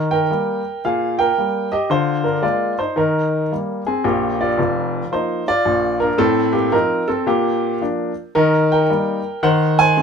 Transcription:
0.00 0.21 D#3 medium
0.00 0.31 D#4 medium
0.00 0.10 A#4 medium
0.11 0.79 A#4 medium
0.11 0.83 G5 medium
0.31 0.59 G3 soft
0.31 0.60 A#3 soft
0.85 1.29 A#2 medium
0.85 1.17 G#4 medium
0.85 1.19 F5 medium
1.19 1.69 A#4 medium
1.19 1.72 G5 medium
1.38 1.67 G3 soft
1.38 1.67 A#3 soft
1.72 1.89 G4 medium
1.72 1.90 D#5 medium
1.90 2.35 D3 medium
1.90 2.23 F4 medium
1.90 2.25 C5 medium
2.24 2.42 D4 soft
2.24 2.43 A#4 medium
2.42 2.72 G#3 soft
2.42 2.72 A#3 soft
2.42 2.76 F4 medium
2.42 2.78 D5 medium
2.79 2.97 D#4 medium
2.79 2.97 C5 medium
2.96 3.42 D#3 medium
2.96 3.47 D#4 soft
2.96 3.51 A#4 medium
3.52 3.81 G3 soft
3.52 3.81 A#3 soft
3.87 4.04 C4 medium
3.87 4.05 G#4 medium
4.04 4.47 A#1 medium
4.04 4.47 A#2 medium
4.04 4.38 A#3 soft
4.04 4.40 G4 medium
4.41 5.09 F4 medium
4.41 5.12 D5 medium
4.58 5.01 F1 medium
4.58 5.01 F2 medium
5.12 5.41 F3 soft
5.12 5.42 A#3 soft
5.12 5.46 D#4 medium
5.12 5.48 C5 medium
5.48 5.98 F4 medium
5.48 6.01 D5 medium
5.65 6.09 A#1 medium
5.65 6.09 A#2 medium
6.00 6.18 D4 medium
6.00 6.19 A#4 medium
6.18 6.64 A2 medium
6.18 6.52 C4 medium
6.18 6.54 A4 medium
6.53 6.72 A#3 soft
6.53 6.72 G4 medium
6.72 7.02 F3 soft
6.72 7.02 C4 soft
6.72 7.06 D#4 medium
6.72 7.08 A#4 medium
7.08 7.26 C4 medium
7.08 7.27 A4 medium
7.26 7.72 A#2 medium
7.26 7.77 A#3 medium
7.26 7.81 G4 medium
7.82 8.11 F3 soft
7.82 8.11 A#3 soft
7.82 8.11 D4 soft
8.35 8.81 D#3 medium
8.35 8.69 D#4 medium
8.35 8.70 A#4 medium
8.72 9.40 A#4 medium
8.72 9.43 G5 medium
8.90 9.19 G3 soft
8.90 9.19 A#3 soft
8.90 9.19 D#4 medium
9.43 9.88 D#3 medium
9.43 9.76 C5 medium
9.43 9.78 F#5 medium
9.79 10.02 C5 medium
9.79 10.02 G#5 loud
9.97 10.02 A3 soft
9.97 10.02 C4 soft
9.97 10.02 D#4 soft

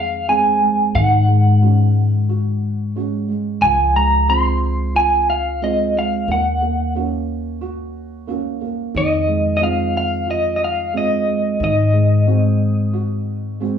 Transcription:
0.00 0.90 F2 medium
0.00 0.93 D#3 medium
0.00 0.27 G#3 medium
0.00 0.27 C4 medium
0.00 0.28 G#4 medium
0.00 0.29 F5 loud
0.28 0.60 G#3 medium
0.28 1.02 C4 medium
0.28 1.02 G#4 medium
0.28 0.91 G#5 medium
0.62 1.01 G#3 medium
0.95 3.58 G#2 medium
0.95 3.62 D#3 medium
0.95 2.91 F#5 medium
1.28 1.60 G#3 medium
1.61 2.94 G#3 medium
1.61 2.95 C#4 medium
1.61 2.28 F#4 medium
2.29 2.95 F#4 medium
2.95 3.27 G#3 medium
2.95 3.69 C#4 medium
2.95 3.69 F#4 medium
3.29 3.69 G#3 medium
3.62 6.25 C#2 medium
3.62 6.29 F3 medium
3.62 3.96 G#5 loud
3.96 4.27 G#3 medium
3.96 4.27 A#5 medium
4.28 5.60 G#3 medium
4.28 5.61 C4 medium
4.28 4.93 F4 medium
4.28 4.96 C6 loud
4.95 5.62 F4 medium
4.95 5.27 G#5 medium
5.30 5.60 F5 medium
5.62 5.94 G#3 medium
5.62 6.35 C4 medium
5.62 6.36 F4 medium
5.62 5.97 D#5 medium
5.95 6.29 G#3 soft
5.95 6.31 F5 medium
6.28 8.90 D#2 medium
6.28 6.60 A#3 medium
6.28 6.93 F#5 medium
6.62 6.94 A#3 medium
6.95 8.26 A#3 medium
6.95 8.26 C#4 medium
6.95 7.60 F#4 medium
7.61 8.27 F#4 medium
8.27 8.60 A#3 medium
8.27 9.01 C#4 medium
8.27 9.01 F#4 medium
8.61 9.01 A#3 medium
8.94 11.56 F2 medium
8.94 11.58 D#3 medium
8.94 9.56 D#5 medium
9.27 9.59 G#3 medium
9.57 9.62 D#5 medium
9.61 10.92 G#3 medium
9.61 10.92 C4 medium
9.61 10.25 F4 medium
9.61 9.96 F5 loud
9.97 10.30 F5 loud
10.27 10.93 F4 medium
10.27 10.53 D#5 medium
10.56 10.62 D#5 medium
10.64 10.93 F5 loud
10.93 11.25 G#3 medium
10.93 11.67 C4 medium
10.93 11.67 F4 medium
10.97 11.63 D#5 medium
11.26 11.66 G#3 medium
11.60 13.79 G#2 medium
11.60 13.79 D#3 medium
11.64 13.79 D#5 medium
11.93 12.25 G#3 medium
12.27 13.59 G#3 medium
12.27 13.60 C4 medium
12.27 12.92 F#4 medium
12.93 13.60 F#4 medium
13.60 13.79 G#3 medium
13.60 13.79 C4 medium
13.60 13.79 F#4 medium

